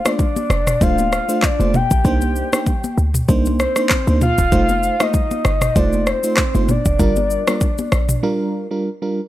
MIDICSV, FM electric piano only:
0, 0, Header, 1, 2, 480
1, 0, Start_track
1, 0, Key_signature, -2, "minor"
1, 0, Tempo, 618557
1, 1589, Time_signature, 4, 2, 24, 8
1, 7202, End_track
2, 0, Start_track
2, 0, Title_t, "FM electric piano"
2, 0, Program_c, 0, 5
2, 37, Note_on_c, 0, 57, 74
2, 40, Note_on_c, 0, 62, 66
2, 41, Note_on_c, 0, 65, 67
2, 43, Note_on_c, 0, 72, 81
2, 181, Note_off_c, 0, 57, 0
2, 182, Note_off_c, 0, 62, 0
2, 183, Note_off_c, 0, 65, 0
2, 184, Note_off_c, 0, 72, 0
2, 627, Note_on_c, 0, 57, 92
2, 627, Note_on_c, 0, 62, 84
2, 630, Note_on_c, 0, 65, 84
2, 632, Note_on_c, 0, 72, 102
2, 968, Note_off_c, 0, 57, 0
2, 968, Note_off_c, 0, 62, 0
2, 970, Note_off_c, 0, 65, 0
2, 971, Note_off_c, 0, 72, 0
2, 996, Note_on_c, 0, 57, 72
2, 999, Note_on_c, 0, 62, 60
2, 1001, Note_on_c, 0, 65, 61
2, 1001, Note_on_c, 0, 72, 80
2, 1141, Note_off_c, 0, 57, 0
2, 1142, Note_off_c, 0, 62, 0
2, 1143, Note_off_c, 0, 65, 0
2, 1143, Note_off_c, 0, 72, 0
2, 1238, Note_on_c, 0, 57, 79
2, 1240, Note_on_c, 0, 62, 67
2, 1241, Note_on_c, 0, 65, 69
2, 1243, Note_on_c, 0, 72, 81
2, 1382, Note_off_c, 0, 57, 0
2, 1382, Note_off_c, 0, 62, 0
2, 1383, Note_off_c, 0, 65, 0
2, 1384, Note_off_c, 0, 72, 0
2, 1586, Note_on_c, 0, 58, 89
2, 1587, Note_on_c, 0, 62, 83
2, 1590, Note_on_c, 0, 63, 82
2, 1590, Note_on_c, 0, 72, 99
2, 1928, Note_off_c, 0, 58, 0
2, 1929, Note_off_c, 0, 62, 0
2, 1930, Note_off_c, 0, 63, 0
2, 1930, Note_off_c, 0, 72, 0
2, 1959, Note_on_c, 0, 58, 73
2, 1959, Note_on_c, 0, 62, 66
2, 1962, Note_on_c, 0, 72, 79
2, 1963, Note_on_c, 0, 63, 69
2, 2102, Note_off_c, 0, 58, 0
2, 2102, Note_off_c, 0, 62, 0
2, 2104, Note_off_c, 0, 63, 0
2, 2104, Note_off_c, 0, 72, 0
2, 2547, Note_on_c, 0, 58, 98
2, 2549, Note_on_c, 0, 62, 86
2, 2549, Note_on_c, 0, 63, 85
2, 2551, Note_on_c, 0, 72, 103
2, 2888, Note_off_c, 0, 58, 0
2, 2889, Note_off_c, 0, 62, 0
2, 2890, Note_off_c, 0, 63, 0
2, 2890, Note_off_c, 0, 72, 0
2, 2919, Note_on_c, 0, 58, 66
2, 2919, Note_on_c, 0, 62, 63
2, 2922, Note_on_c, 0, 63, 62
2, 2924, Note_on_c, 0, 72, 79
2, 3062, Note_off_c, 0, 58, 0
2, 3062, Note_off_c, 0, 62, 0
2, 3063, Note_off_c, 0, 63, 0
2, 3065, Note_off_c, 0, 72, 0
2, 3160, Note_on_c, 0, 58, 73
2, 3160, Note_on_c, 0, 62, 68
2, 3161, Note_on_c, 0, 63, 67
2, 3163, Note_on_c, 0, 72, 86
2, 3302, Note_off_c, 0, 58, 0
2, 3303, Note_off_c, 0, 62, 0
2, 3303, Note_off_c, 0, 63, 0
2, 3304, Note_off_c, 0, 72, 0
2, 3506, Note_on_c, 0, 57, 94
2, 3508, Note_on_c, 0, 63, 83
2, 3510, Note_on_c, 0, 65, 84
2, 3511, Note_on_c, 0, 72, 102
2, 3848, Note_off_c, 0, 57, 0
2, 3849, Note_off_c, 0, 63, 0
2, 3850, Note_off_c, 0, 65, 0
2, 3850, Note_off_c, 0, 72, 0
2, 3880, Note_on_c, 0, 57, 74
2, 3881, Note_on_c, 0, 63, 70
2, 3883, Note_on_c, 0, 65, 64
2, 3885, Note_on_c, 0, 72, 80
2, 4022, Note_off_c, 0, 57, 0
2, 4023, Note_off_c, 0, 63, 0
2, 4024, Note_off_c, 0, 65, 0
2, 4025, Note_off_c, 0, 72, 0
2, 4467, Note_on_c, 0, 57, 93
2, 4468, Note_on_c, 0, 63, 85
2, 4470, Note_on_c, 0, 65, 84
2, 4471, Note_on_c, 0, 72, 104
2, 4808, Note_off_c, 0, 57, 0
2, 4809, Note_off_c, 0, 63, 0
2, 4810, Note_off_c, 0, 65, 0
2, 4810, Note_off_c, 0, 72, 0
2, 4837, Note_on_c, 0, 57, 70
2, 4840, Note_on_c, 0, 63, 65
2, 4841, Note_on_c, 0, 65, 62
2, 4843, Note_on_c, 0, 72, 77
2, 4981, Note_off_c, 0, 57, 0
2, 4983, Note_off_c, 0, 63, 0
2, 4983, Note_off_c, 0, 65, 0
2, 4984, Note_off_c, 0, 72, 0
2, 5079, Note_on_c, 0, 57, 74
2, 5080, Note_on_c, 0, 63, 70
2, 5082, Note_on_c, 0, 65, 70
2, 5085, Note_on_c, 0, 72, 82
2, 5222, Note_off_c, 0, 57, 0
2, 5223, Note_off_c, 0, 63, 0
2, 5224, Note_off_c, 0, 65, 0
2, 5225, Note_off_c, 0, 72, 0
2, 5425, Note_on_c, 0, 55, 89
2, 5426, Note_on_c, 0, 62, 83
2, 5428, Note_on_c, 0, 65, 79
2, 5430, Note_on_c, 0, 70, 99
2, 5767, Note_off_c, 0, 55, 0
2, 5768, Note_off_c, 0, 62, 0
2, 5769, Note_off_c, 0, 65, 0
2, 5770, Note_off_c, 0, 70, 0
2, 5799, Note_on_c, 0, 55, 70
2, 5799, Note_on_c, 0, 62, 66
2, 5803, Note_on_c, 0, 65, 68
2, 5803, Note_on_c, 0, 70, 78
2, 5942, Note_off_c, 0, 55, 0
2, 5942, Note_off_c, 0, 62, 0
2, 5944, Note_off_c, 0, 65, 0
2, 5944, Note_off_c, 0, 70, 0
2, 6385, Note_on_c, 0, 55, 94
2, 6387, Note_on_c, 0, 62, 82
2, 6388, Note_on_c, 0, 65, 84
2, 6390, Note_on_c, 0, 70, 102
2, 6727, Note_off_c, 0, 55, 0
2, 6728, Note_off_c, 0, 62, 0
2, 6729, Note_off_c, 0, 65, 0
2, 6730, Note_off_c, 0, 70, 0
2, 6756, Note_on_c, 0, 55, 70
2, 6758, Note_on_c, 0, 62, 63
2, 6760, Note_on_c, 0, 65, 64
2, 6762, Note_on_c, 0, 70, 80
2, 6901, Note_off_c, 0, 55, 0
2, 6901, Note_off_c, 0, 62, 0
2, 6903, Note_off_c, 0, 65, 0
2, 6903, Note_off_c, 0, 70, 0
2, 6998, Note_on_c, 0, 55, 72
2, 6999, Note_on_c, 0, 62, 65
2, 7001, Note_on_c, 0, 65, 68
2, 7003, Note_on_c, 0, 70, 85
2, 7142, Note_off_c, 0, 55, 0
2, 7142, Note_off_c, 0, 62, 0
2, 7143, Note_off_c, 0, 65, 0
2, 7144, Note_off_c, 0, 70, 0
2, 7202, End_track
0, 0, End_of_file